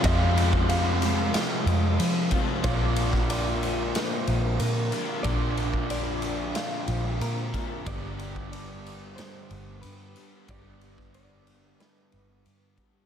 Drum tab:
RD |x-x-x-x-x-x-x-x-|x-x-x-x-x-x-x-x-|x-x-x-x-x-x-x-x-|x-x-x-x-x-x-x-x-|
SD |--------o-------|---o----o-------|--------o-------|--------o-------|
BD |o--o----------o-|o--o------------|o--o----------o-|o--o------------|

RD |x-x-x-x-x-x-x-x-|
SD |---o----o-------|
BD |o--o----------o-|